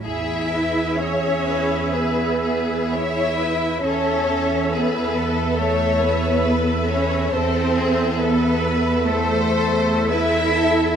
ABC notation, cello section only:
X:1
M:4/4
L:1/8
Q:1/4=68
K:E
V:1 name="Cello section"
E2 C2 B,2 E2 | C2 B,2 A, B,2 C | =C2 B,2 A,2 E2 |]